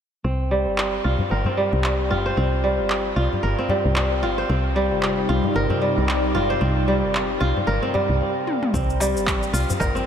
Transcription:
0.24 C2 C4
0.51 G3, tabla tin
0.66 G1, tabla na
0.78 clap
1.04 C2 F4
1.19 tabla tin, tabla ge
1.30 G1 A#4, tabla na
1.45 C4, tabla ge
1.57 G3, tabla tin
1.73 C2, tabla na
1.84 clap
2.00 tabla tin
2.11 G1 F4, tabla na, tabla tin, tabla ge
2.26 C5
2.37 C2 C4
2.64 G3, tabla tin
2.79 G1
2.90 clap
3.16 C2 F4
3.33 tabla tin, tabla ge
3.43 G1 A#4
3.59 C4
3.69 G3, tabla na, tabla ge
3.84 C2, tabla tin
3.96 clap
4.11 tabla tin
4.23 G1 F4, tabla na
4.38 C5
4.49 C2 C3 C4
4.61 G3
4.76 G3, tabla tin
4.83 D#4
4.91 G1, tabla na
5.03 clap
5.29 C2 F4
5.40 D5, tabla ge
5.44 tabla tin
5.54 G1 A#4, tabla na
5.70 C4, tabla ge
5.82 G3, tabla tin
5.98 C2, tabla na
6.09 clap
6.24 tabla tin
6.35 G1 F4, tabla na, tabla tin, tabla ge
6.50 C5
6.61 C2 C4
6.88 G3, tabla tin
7.03 G1
7.15 clap
7.40 C2 F4
7.57 tabla tin, tabla ge
7.67 G1 A#4
7.82 C4
7.94 G3, tabla na, tabla ge
8.09 C2, tabla tin
8.47 high tom
8.63 mid tom
8.74 C2 C4, kick, shaker
8.90 shaker
9.00 G3, tabla tin, low woodblock, shaker
9.16 G1, shaker
9.27 kick, clap, shaker
9.43 shaker
9.53 C2 F4, shaker
9.70 tabla tin, tabla ge, shaker
9.80 G1 A#4, kick, tabla na, low woodblock, shaker
9.95 C4, tabla na, tabla ge, shaker

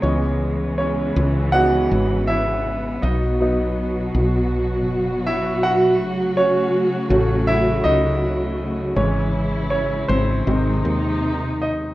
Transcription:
Already playing: G#3
0.02 C#2 C#3 E3 B3 C#4 C#5 D#5
0.78 C#4 C#5
1.16 C#2
1.52 E3 B3 D#4 F#4 F#5
1.91 G#1
2.27 E4 E5
3.02 B1 B2 F#3 D#4 F#4 D#5
3.40 F#3 B3 D#4
4.15 B1
4.88 F#1
5.27 E4 E5
5.63 F#4 F#5
5.99 A1 C#3 A3
6.37 C#4 C#5
7.10 A1 F#3 A3 C#4
7.47 E4 E5
7.84 C#2 D#4 D#5
8.96 G#1 E3 G#3 C#4 E4 C#5
9.70 C#4 C#5
10.08 G#1 C4 C5
10.47 G#1 C3 D#3 G#3 C4 D#4
10.85 D#2
11.62 D#4 D#5

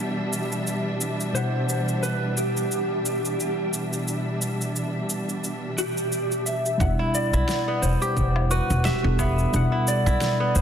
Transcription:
Already playing: B2 E3 G3 B3 D4 E4 F#4 E5 F#5
0.33 shaker
0.52 shaker
0.67 shaker
1.01 shaker
1.20 shaker
1.33 B2 G3 D4 E4 C5 F#5, shaker
1.69 shaker
1.88 shaker
2.03 B4, shaker
2.37 G4, shaker
2.57 shaker
2.72 shaker
3.06 shaker
3.25 shaker
3.40 shaker
3.74 shaker
3.93 shaker
4.08 shaker
4.42 shaker
4.61 shaker
4.76 shaker
5.10 shaker
5.29 shaker
5.44 shaker
5.78 G4, shaker
5.97 shaker
6.12 shaker
6.32 shaker
6.46 E5, shaker
6.66 shaker
6.78 E1 B2 G3 D4 E4 F#5, kick, shaker
6.99 E4
7.15 D5, shaker
7.33 B1 E4, shaker
7.49 snare, shaker
7.68 B3
7.82 E1 C5, shaker
8.02 G4, shaker
8.17 E1, kick, shaker
8.36 low woodblock
8.51 F#4 B4, shaker
8.70 E1, shaker
8.85 G4 E5, snare, shaker
9.03 E1 G3 B3 D4 E4 A4
9.19 B3 E5, kick, low woodblock, shaker
9.39 shaker
9.52 E1 B2 G3 D4 E4, shaker
9.56 F#5
9.72 E4
9.88 D5, shaker
10.06 B1 E4, shaker
10.21 snare, shaker
10.40 B3
10.56 E1 C5, shaker

